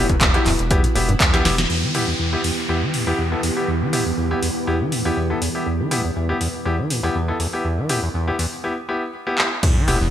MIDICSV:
0, 0, Header, 1, 8, 480
1, 0, Start_track
1, 0, Tempo, 495868
1, 1644, Time_signature, 4, 2, 24, 8
1, 9782, End_track
2, 0, Start_track
2, 0, Title_t, "Grand piano"
2, 0, Program_c, 0, 0
2, 331, Note_on_c, 0, 59, 81
2, 331, Note_on_c, 0, 64, 76
2, 332, Note_on_c, 0, 67, 91
2, 397, Note_off_c, 0, 59, 0
2, 397, Note_off_c, 0, 64, 0
2, 397, Note_off_c, 0, 67, 0
2, 684, Note_on_c, 0, 64, 72
2, 684, Note_on_c, 0, 67, 90
2, 685, Note_on_c, 0, 59, 81
2, 759, Note_off_c, 0, 59, 0
2, 759, Note_off_c, 0, 64, 0
2, 759, Note_off_c, 0, 67, 0
2, 923, Note_on_c, 0, 59, 81
2, 923, Note_on_c, 0, 64, 78
2, 924, Note_on_c, 0, 67, 90
2, 1043, Note_off_c, 0, 59, 0
2, 1043, Note_off_c, 0, 64, 0
2, 1043, Note_off_c, 0, 67, 0
2, 1292, Note_on_c, 0, 59, 90
2, 1292, Note_on_c, 0, 64, 83
2, 1292, Note_on_c, 0, 67, 106
2, 1387, Note_off_c, 0, 59, 0
2, 1387, Note_off_c, 0, 64, 0
2, 1387, Note_off_c, 0, 67, 0
2, 1404, Note_on_c, 0, 59, 78
2, 1404, Note_on_c, 0, 64, 70
2, 1404, Note_on_c, 0, 67, 87
2, 1478, Note_off_c, 0, 59, 0
2, 1478, Note_off_c, 0, 64, 0
2, 1478, Note_off_c, 0, 67, 0
2, 1884, Note_on_c, 0, 59, 84
2, 1884, Note_on_c, 0, 67, 92
2, 1885, Note_on_c, 0, 64, 78
2, 1959, Note_off_c, 0, 59, 0
2, 1959, Note_off_c, 0, 64, 0
2, 1959, Note_off_c, 0, 67, 0
2, 2252, Note_on_c, 0, 64, 71
2, 2253, Note_on_c, 0, 59, 74
2, 2253, Note_on_c, 0, 67, 86
2, 2317, Note_off_c, 0, 64, 0
2, 2318, Note_off_c, 0, 59, 0
2, 2318, Note_off_c, 0, 67, 0
2, 2604, Note_on_c, 0, 59, 73
2, 2605, Note_on_c, 0, 64, 69
2, 2605, Note_on_c, 0, 67, 82
2, 2679, Note_off_c, 0, 59, 0
2, 2679, Note_off_c, 0, 64, 0
2, 2679, Note_off_c, 0, 67, 0
2, 2972, Note_on_c, 0, 59, 82
2, 2972, Note_on_c, 0, 64, 74
2, 2972, Note_on_c, 0, 67, 94
2, 3076, Note_off_c, 0, 59, 0
2, 3077, Note_off_c, 0, 64, 0
2, 3077, Note_off_c, 0, 67, 0
2, 3212, Note_on_c, 0, 59, 70
2, 3213, Note_on_c, 0, 64, 68
2, 3213, Note_on_c, 0, 69, 78
2, 3277, Note_off_c, 0, 59, 0
2, 3278, Note_off_c, 0, 64, 0
2, 3278, Note_off_c, 0, 69, 0
2, 3452, Note_on_c, 0, 59, 68
2, 3452, Note_on_c, 0, 64, 64
2, 3452, Note_on_c, 0, 67, 77
2, 3556, Note_off_c, 0, 64, 0
2, 3556, Note_off_c, 0, 67, 0
2, 3557, Note_off_c, 0, 59, 0
2, 3804, Note_on_c, 0, 59, 84
2, 3804, Note_on_c, 0, 64, 80
2, 3804, Note_on_c, 0, 67, 95
2, 3878, Note_off_c, 0, 64, 0
2, 3879, Note_off_c, 0, 59, 0
2, 3879, Note_off_c, 0, 67, 0
2, 4172, Note_on_c, 0, 59, 75
2, 4172, Note_on_c, 0, 64, 69
2, 4172, Note_on_c, 0, 67, 84
2, 4237, Note_off_c, 0, 59, 0
2, 4237, Note_off_c, 0, 64, 0
2, 4237, Note_off_c, 0, 67, 0
2, 4523, Note_on_c, 0, 67, 84
2, 4524, Note_on_c, 0, 59, 77
2, 4524, Note_on_c, 0, 64, 69
2, 4598, Note_off_c, 0, 59, 0
2, 4598, Note_off_c, 0, 64, 0
2, 4598, Note_off_c, 0, 67, 0
2, 4891, Note_on_c, 0, 59, 82
2, 4891, Note_on_c, 0, 64, 74
2, 4891, Note_on_c, 0, 67, 93
2, 4996, Note_off_c, 0, 59, 0
2, 4996, Note_off_c, 0, 64, 0
2, 4996, Note_off_c, 0, 67, 0
2, 5131, Note_on_c, 0, 59, 69
2, 5131, Note_on_c, 0, 64, 65
2, 5131, Note_on_c, 0, 69, 78
2, 5197, Note_off_c, 0, 59, 0
2, 5197, Note_off_c, 0, 64, 0
2, 5197, Note_off_c, 0, 69, 0
2, 5371, Note_on_c, 0, 59, 67
2, 5371, Note_on_c, 0, 64, 64
2, 5371, Note_on_c, 0, 67, 76
2, 5476, Note_off_c, 0, 59, 0
2, 5476, Note_off_c, 0, 64, 0
2, 5476, Note_off_c, 0, 67, 0
2, 5722, Note_on_c, 0, 59, 85
2, 5723, Note_on_c, 0, 64, 83
2, 5723, Note_on_c, 0, 67, 92
2, 5798, Note_off_c, 0, 59, 0
2, 5798, Note_off_c, 0, 64, 0
2, 5798, Note_off_c, 0, 67, 0
2, 6090, Note_on_c, 0, 59, 76
2, 6090, Note_on_c, 0, 64, 72
2, 6090, Note_on_c, 0, 67, 83
2, 6156, Note_off_c, 0, 59, 0
2, 6156, Note_off_c, 0, 64, 0
2, 6156, Note_off_c, 0, 67, 0
2, 6441, Note_on_c, 0, 64, 70
2, 6442, Note_on_c, 0, 59, 76
2, 6442, Note_on_c, 0, 67, 84
2, 6517, Note_off_c, 0, 64, 0
2, 6518, Note_off_c, 0, 59, 0
2, 6518, Note_off_c, 0, 67, 0
2, 6810, Note_on_c, 0, 59, 87
2, 6810, Note_on_c, 0, 64, 80
2, 6810, Note_on_c, 0, 67, 93
2, 6915, Note_off_c, 0, 59, 0
2, 6915, Note_off_c, 0, 64, 0
2, 6915, Note_off_c, 0, 67, 0
2, 7050, Note_on_c, 0, 59, 75
2, 7050, Note_on_c, 0, 64, 65
2, 7050, Note_on_c, 0, 69, 78
2, 7116, Note_off_c, 0, 59, 0
2, 7116, Note_off_c, 0, 64, 0
2, 7116, Note_off_c, 0, 69, 0
2, 7290, Note_on_c, 0, 64, 64
2, 7290, Note_on_c, 0, 67, 77
2, 7291, Note_on_c, 0, 59, 69
2, 7396, Note_off_c, 0, 59, 0
2, 7396, Note_off_c, 0, 64, 0
2, 7396, Note_off_c, 0, 67, 0
2, 7642, Note_on_c, 0, 59, 84
2, 7642, Note_on_c, 0, 64, 80
2, 7642, Note_on_c, 0, 67, 101
2, 7718, Note_off_c, 0, 59, 0
2, 7718, Note_off_c, 0, 64, 0
2, 7718, Note_off_c, 0, 67, 0
2, 8010, Note_on_c, 0, 59, 77
2, 8010, Note_on_c, 0, 64, 72
2, 8010, Note_on_c, 0, 67, 88
2, 8076, Note_off_c, 0, 59, 0
2, 8076, Note_off_c, 0, 67, 0
2, 8077, Note_off_c, 0, 64, 0
2, 8362, Note_on_c, 0, 59, 72
2, 8362, Note_on_c, 0, 64, 69
2, 8363, Note_on_c, 0, 67, 82
2, 8438, Note_off_c, 0, 59, 0
2, 8438, Note_off_c, 0, 64, 0
2, 8438, Note_off_c, 0, 67, 0
2, 8603, Note_on_c, 0, 59, 78
2, 8603, Note_on_c, 0, 64, 73
2, 8603, Note_on_c, 0, 67, 86
2, 8723, Note_off_c, 0, 59, 0
2, 8723, Note_off_c, 0, 64, 0
2, 8723, Note_off_c, 0, 67, 0
2, 8970, Note_on_c, 0, 64, 79
2, 8970, Note_on_c, 0, 67, 96
2, 8971, Note_on_c, 0, 59, 88
2, 9066, Note_off_c, 0, 59, 0
2, 9066, Note_off_c, 0, 64, 0
2, 9066, Note_off_c, 0, 67, 0
2, 9083, Note_on_c, 0, 59, 73
2, 9083, Note_on_c, 0, 64, 67
2, 9083, Note_on_c, 0, 67, 81
2, 9158, Note_off_c, 0, 59, 0
2, 9158, Note_off_c, 0, 64, 0
2, 9158, Note_off_c, 0, 67, 0
2, 9562, Note_on_c, 0, 59, 89
2, 9562, Note_on_c, 0, 64, 84
2, 9562, Note_on_c, 0, 67, 102
2, 9637, Note_off_c, 0, 64, 0
2, 9638, Note_off_c, 0, 59, 0
2, 9638, Note_off_c, 0, 67, 0
2, 9782, End_track
3, 0, Start_track
3, 0, Title_t, "String machine"
3, 0, Program_c, 1, 50
3, 0, Note_on_c, 1, 59, 89
3, 0, Note_on_c, 1, 64, 81
3, 0, Note_on_c, 1, 66, 100
3, 1605, Note_off_c, 1, 59, 0
3, 1605, Note_off_c, 1, 64, 0
3, 1631, Note_off_c, 1, 66, 0
3, 1646, Note_on_c, 1, 52, 85
3, 1646, Note_on_c, 1, 59, 79
3, 1646, Note_on_c, 1, 67, 93
3, 8326, Note_off_c, 1, 52, 0
3, 8326, Note_off_c, 1, 59, 0
3, 8326, Note_off_c, 1, 67, 0
3, 9324, Note_on_c, 1, 55, 88
3, 9324, Note_on_c, 1, 59, 82
3, 9324, Note_on_c, 1, 64, 97
3, 9782, Note_off_c, 1, 55, 0
3, 9782, Note_off_c, 1, 59, 0
3, 9782, Note_off_c, 1, 64, 0
3, 9782, End_track
4, 0, Start_track
4, 0, Title_t, "Acid bass"
4, 0, Program_c, 2, 38
4, 89, Note_on_c, 2, 40, 79
4, 152, Note_off_c, 2, 40, 0
4, 203, Note_on_c, 2, 40, 83
4, 331, Note_on_c, 2, 38, 73
4, 345, Note_off_c, 2, 40, 0
4, 368, Note_off_c, 2, 38, 0
4, 443, Note_on_c, 2, 40, 80
4, 514, Note_off_c, 2, 40, 0
4, 683, Note_on_c, 2, 40, 86
4, 811, Note_on_c, 2, 52, 75
4, 826, Note_off_c, 2, 40, 0
4, 848, Note_off_c, 2, 52, 0
4, 923, Note_on_c, 2, 45, 78
4, 965, Note_off_c, 2, 45, 0
4, 1051, Note_on_c, 2, 43, 98
4, 1113, Note_off_c, 2, 43, 0
4, 1162, Note_on_c, 2, 40, 104
4, 1291, Note_on_c, 2, 38, 104
4, 1305, Note_off_c, 2, 40, 0
4, 1403, Note_on_c, 2, 42, 98
4, 1418, Note_off_c, 2, 38, 0
4, 1474, Note_off_c, 2, 42, 0
4, 1531, Note_on_c, 2, 47, 77
4, 1593, Note_off_c, 2, 47, 0
4, 1642, Note_on_c, 2, 40, 84
4, 1770, Note_on_c, 2, 52, 74
4, 1784, Note_off_c, 2, 40, 0
4, 1882, Note_on_c, 2, 45, 77
4, 1897, Note_off_c, 2, 52, 0
4, 1988, Note_off_c, 2, 45, 0
4, 2009, Note_on_c, 2, 40, 73
4, 2072, Note_off_c, 2, 40, 0
4, 2121, Note_on_c, 2, 40, 78
4, 2249, Note_on_c, 2, 38, 72
4, 2264, Note_off_c, 2, 40, 0
4, 2287, Note_off_c, 2, 38, 0
4, 2362, Note_on_c, 2, 40, 77
4, 2433, Note_off_c, 2, 40, 0
4, 2602, Note_on_c, 2, 40, 77
4, 2731, Note_on_c, 2, 52, 76
4, 2746, Note_off_c, 2, 40, 0
4, 2844, Note_on_c, 2, 45, 77
4, 2858, Note_off_c, 2, 52, 0
4, 2949, Note_off_c, 2, 45, 0
4, 2971, Note_on_c, 2, 40, 77
4, 3033, Note_off_c, 2, 40, 0
4, 3082, Note_on_c, 2, 40, 83
4, 3210, Note_on_c, 2, 38, 78
4, 3225, Note_off_c, 2, 40, 0
4, 3248, Note_off_c, 2, 38, 0
4, 3324, Note_on_c, 2, 40, 72
4, 3394, Note_off_c, 2, 40, 0
4, 3564, Note_on_c, 2, 40, 83
4, 3693, Note_on_c, 2, 52, 71
4, 3707, Note_off_c, 2, 40, 0
4, 3804, Note_on_c, 2, 45, 73
4, 3818, Note_off_c, 2, 52, 0
4, 3909, Note_off_c, 2, 45, 0
4, 3930, Note_on_c, 2, 40, 73
4, 3993, Note_off_c, 2, 40, 0
4, 4043, Note_on_c, 2, 40, 79
4, 4170, Note_on_c, 2, 38, 72
4, 4185, Note_off_c, 2, 40, 0
4, 4208, Note_off_c, 2, 38, 0
4, 4284, Note_on_c, 2, 40, 78
4, 4354, Note_off_c, 2, 40, 0
4, 4523, Note_on_c, 2, 40, 80
4, 4652, Note_on_c, 2, 52, 73
4, 4666, Note_off_c, 2, 40, 0
4, 4763, Note_on_c, 2, 45, 75
4, 4778, Note_off_c, 2, 52, 0
4, 4869, Note_off_c, 2, 45, 0
4, 4891, Note_on_c, 2, 40, 74
4, 4953, Note_off_c, 2, 40, 0
4, 5003, Note_on_c, 2, 40, 83
4, 5131, Note_on_c, 2, 38, 76
4, 5146, Note_off_c, 2, 40, 0
4, 5168, Note_off_c, 2, 38, 0
4, 5243, Note_on_c, 2, 40, 72
4, 5314, Note_off_c, 2, 40, 0
4, 5483, Note_on_c, 2, 40, 81
4, 5612, Note_on_c, 2, 52, 77
4, 5627, Note_off_c, 2, 40, 0
4, 5725, Note_on_c, 2, 45, 78
4, 5740, Note_off_c, 2, 52, 0
4, 5830, Note_off_c, 2, 45, 0
4, 5852, Note_on_c, 2, 40, 71
4, 5913, Note_off_c, 2, 40, 0
4, 5963, Note_on_c, 2, 40, 81
4, 6091, Note_on_c, 2, 38, 73
4, 6105, Note_off_c, 2, 40, 0
4, 6128, Note_off_c, 2, 38, 0
4, 6202, Note_on_c, 2, 40, 74
4, 6273, Note_off_c, 2, 40, 0
4, 6442, Note_on_c, 2, 40, 83
4, 6570, Note_on_c, 2, 52, 74
4, 6584, Note_off_c, 2, 40, 0
4, 6681, Note_on_c, 2, 45, 76
4, 6696, Note_off_c, 2, 52, 0
4, 6788, Note_off_c, 2, 45, 0
4, 6808, Note_on_c, 2, 40, 74
4, 6871, Note_off_c, 2, 40, 0
4, 6921, Note_on_c, 2, 40, 87
4, 7049, Note_on_c, 2, 38, 79
4, 7063, Note_off_c, 2, 40, 0
4, 7087, Note_off_c, 2, 38, 0
4, 7161, Note_on_c, 2, 40, 72
4, 7233, Note_off_c, 2, 40, 0
4, 7402, Note_on_c, 2, 40, 84
4, 7530, Note_on_c, 2, 52, 75
4, 7544, Note_off_c, 2, 40, 0
4, 7642, Note_on_c, 2, 45, 74
4, 7656, Note_off_c, 2, 52, 0
4, 7748, Note_off_c, 2, 45, 0
4, 7770, Note_on_c, 2, 40, 74
4, 7833, Note_off_c, 2, 40, 0
4, 7881, Note_on_c, 2, 40, 79
4, 8010, Note_on_c, 2, 38, 72
4, 8024, Note_off_c, 2, 40, 0
4, 8048, Note_off_c, 2, 38, 0
4, 8122, Note_on_c, 2, 40, 80
4, 8193, Note_off_c, 2, 40, 0
4, 9323, Note_on_c, 2, 40, 85
4, 9450, Note_on_c, 2, 52, 75
4, 9465, Note_off_c, 2, 40, 0
4, 9562, Note_on_c, 2, 45, 79
4, 9576, Note_off_c, 2, 52, 0
4, 9668, Note_off_c, 2, 45, 0
4, 9691, Note_on_c, 2, 40, 76
4, 9753, Note_off_c, 2, 40, 0
4, 9782, End_track
5, 0, Start_track
5, 0, Title_t, "Analog synth bass"
5, 0, Program_c, 3, 38
5, 93, Note_on_c, 3, 28, 91
5, 282, Note_off_c, 3, 28, 0
5, 444, Note_on_c, 3, 26, 91
5, 547, Note_off_c, 3, 26, 0
5, 572, Note_on_c, 3, 28, 103
5, 762, Note_off_c, 3, 28, 0
5, 924, Note_on_c, 3, 28, 99
5, 1120, Note_off_c, 3, 28, 0
5, 1404, Note_on_c, 3, 28, 98
5, 1600, Note_off_c, 3, 28, 0
5, 9563, Note_on_c, 3, 28, 99
5, 9667, Note_off_c, 3, 28, 0
5, 9692, Note_on_c, 3, 28, 93
5, 9782, Note_off_c, 3, 28, 0
5, 9782, End_track
6, 0, Start_track
6, 0, Title_t, "Downlifter"
6, 0, Program_c, 4, 103
6, 1644, Note_on_c, 4, 60, 69
6, 5484, Note_off_c, 4, 60, 0
6, 9782, End_track
7, 0, Start_track
7, 0, Title_t, "Sub drop"
7, 0, Program_c, 5, 103
7, 9323, Note_on_c, 5, 60, 78
7, 9782, Note_off_c, 5, 60, 0
7, 9782, End_track
8, 0, Start_track
8, 0, Title_t, "Drums"
8, 91, Note_on_c, 9, 42, 40
8, 93, Note_on_c, 9, 36, 63
8, 188, Note_off_c, 9, 42, 0
8, 189, Note_off_c, 9, 36, 0
8, 203, Note_on_c, 9, 42, 88
8, 205, Note_on_c, 9, 36, 121
8, 205, Note_on_c, 9, 39, 126
8, 300, Note_off_c, 9, 42, 0
8, 301, Note_off_c, 9, 36, 0
8, 302, Note_off_c, 9, 39, 0
8, 331, Note_on_c, 9, 42, 40
8, 428, Note_off_c, 9, 42, 0
8, 444, Note_on_c, 9, 46, 94
8, 446, Note_on_c, 9, 39, 39
8, 541, Note_off_c, 9, 46, 0
8, 543, Note_off_c, 9, 39, 0
8, 572, Note_on_c, 9, 42, 40
8, 669, Note_off_c, 9, 42, 0
8, 683, Note_on_c, 9, 42, 85
8, 684, Note_on_c, 9, 36, 117
8, 780, Note_off_c, 9, 42, 0
8, 781, Note_off_c, 9, 36, 0
8, 812, Note_on_c, 9, 42, 58
8, 909, Note_off_c, 9, 42, 0
8, 925, Note_on_c, 9, 46, 101
8, 1021, Note_off_c, 9, 46, 0
8, 1053, Note_on_c, 9, 42, 39
8, 1150, Note_off_c, 9, 42, 0
8, 1165, Note_on_c, 9, 36, 120
8, 1166, Note_on_c, 9, 42, 83
8, 1168, Note_on_c, 9, 39, 123
8, 1261, Note_off_c, 9, 36, 0
8, 1262, Note_off_c, 9, 42, 0
8, 1264, Note_off_c, 9, 39, 0
8, 1294, Note_on_c, 9, 38, 51
8, 1294, Note_on_c, 9, 42, 38
8, 1390, Note_off_c, 9, 38, 0
8, 1390, Note_off_c, 9, 42, 0
8, 1406, Note_on_c, 9, 38, 82
8, 1406, Note_on_c, 9, 46, 91
8, 1503, Note_off_c, 9, 38, 0
8, 1503, Note_off_c, 9, 46, 0
8, 1533, Note_on_c, 9, 38, 78
8, 1533, Note_on_c, 9, 42, 55
8, 1630, Note_off_c, 9, 38, 0
8, 1630, Note_off_c, 9, 42, 0
8, 1644, Note_on_c, 9, 49, 82
8, 1741, Note_off_c, 9, 49, 0
8, 1884, Note_on_c, 9, 46, 99
8, 1981, Note_off_c, 9, 46, 0
8, 2363, Note_on_c, 9, 46, 91
8, 2460, Note_off_c, 9, 46, 0
8, 2844, Note_on_c, 9, 46, 94
8, 2941, Note_off_c, 9, 46, 0
8, 3324, Note_on_c, 9, 46, 90
8, 3420, Note_off_c, 9, 46, 0
8, 3804, Note_on_c, 9, 46, 104
8, 3901, Note_off_c, 9, 46, 0
8, 4284, Note_on_c, 9, 46, 93
8, 4380, Note_off_c, 9, 46, 0
8, 4764, Note_on_c, 9, 46, 102
8, 4861, Note_off_c, 9, 46, 0
8, 5244, Note_on_c, 9, 46, 90
8, 5341, Note_off_c, 9, 46, 0
8, 5723, Note_on_c, 9, 46, 108
8, 5820, Note_off_c, 9, 46, 0
8, 6203, Note_on_c, 9, 46, 92
8, 6300, Note_off_c, 9, 46, 0
8, 6683, Note_on_c, 9, 46, 100
8, 6780, Note_off_c, 9, 46, 0
8, 7162, Note_on_c, 9, 46, 90
8, 7259, Note_off_c, 9, 46, 0
8, 7641, Note_on_c, 9, 46, 101
8, 7738, Note_off_c, 9, 46, 0
8, 8122, Note_on_c, 9, 46, 89
8, 8219, Note_off_c, 9, 46, 0
8, 9082, Note_on_c, 9, 39, 87
8, 9179, Note_off_c, 9, 39, 0
8, 9322, Note_on_c, 9, 42, 89
8, 9322, Note_on_c, 9, 57, 109
8, 9323, Note_on_c, 9, 36, 117
8, 9419, Note_off_c, 9, 42, 0
8, 9419, Note_off_c, 9, 57, 0
8, 9420, Note_off_c, 9, 36, 0
8, 9562, Note_on_c, 9, 46, 106
8, 9659, Note_off_c, 9, 46, 0
8, 9782, End_track
0, 0, End_of_file